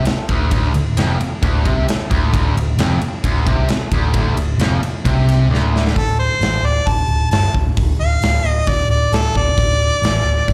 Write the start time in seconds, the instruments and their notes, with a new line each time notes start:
0.05 muted picked electric bass stroke, muted distorted electric guitar stroke, snare, ride
0.29 picked electric bass D1, distorted electric guitar D2, kick, ride
0.51 picked electric bass D1, distorted electric guitar D2, kick, ride
0.74 picked electric bass D1, distorted electric guitar D2, ride
0.97 picked electric bass F1, distorted electric guitar F2, snare, ride
1.20 muted picked electric bass stroke, muted distorted electric guitar stroke, ride
1.42 picked electric bass D1, distorted electric guitar D2, kick, ride
1.64 picked electric bass C2, distorted electric guitar C3, kick, ride
1.87 muted picked electric bass stroke, muted distorted electric guitar stroke, snare, ride
2.10 picked electric bass D1, distorted electric guitar D2, kick, ride
2.33 picked electric bass D1, distorted electric guitar D2, kick, ride
2.55 picked electric bass D1, distorted electric guitar D2, ride
2.77 picked electric bass F1, distorted electric guitar F2, snare, ride
3.01 muted picked electric bass stroke, muted distorted electric guitar stroke, ride
3.24 picked electric bass D1, distorted electric guitar D2, kick, ride
3.46 picked electric bass C2, distorted electric guitar C3, kick, ride
3.68 muted picked electric bass stroke, muted distorted electric guitar stroke, snare, ride
3.92 picked electric bass D1, distorted electric guitar D2, kick, ride
4.14 picked electric bass D1, distorted electric guitar D2, kick, ride
4.35 picked electric bass D1, distorted electric guitar D2, ride
4.58 picked electric bass F1, distorted electric guitar F2, snare, ride
4.81 muted picked electric bass stroke, muted distorted electric guitar stroke, ride
5.04 picked electric bass C2, distorted electric guitar C3, kick, ride
5.29 snare, ride
5.49 picked electric bass D1, distorted electric guitar D2
5.54 snare
5.76 snare
5.87 snare
5.96 picked electric bass D1, harmonica A4, kick, open hi-hat
6.19 harmonica C5
6.41 picked electric bass A1, snare, open hi-hat
6.63 picked electric bass D1, harmonica D5
6.87 picked electric bass D1, harmonica A5, kick, open hi-hat
7.08 picked electric bass D1
7.31 picked electric bass G1, harmonica A5, snare, open hi-hat
7.54 picked electric bass D1, kick
7.77 picked electric bass D1, kick, open hi-hat
8.00 picked electric bass D1, harmonica F5
8.22 picked electric bass D1, snare, open hi-hat
8.45 picked electric bass D1, harmonica D#5
8.67 picked electric bass D1, harmonica D5, kick, open hi-hat
8.90 picked electric bass D1, harmonica D5
9.12 picked electric bass D1, harmonica A4, snare, open hi-hat
9.35 picked electric bass D1, harmonica D5, kick
9.57 picked electric bass D1, kick, open hi-hat
10.02 picked electric bass A1, snare, open hi-hat
10.24 picked electric bass D1
10.48 picked electric bass D1, kick, open hi-hat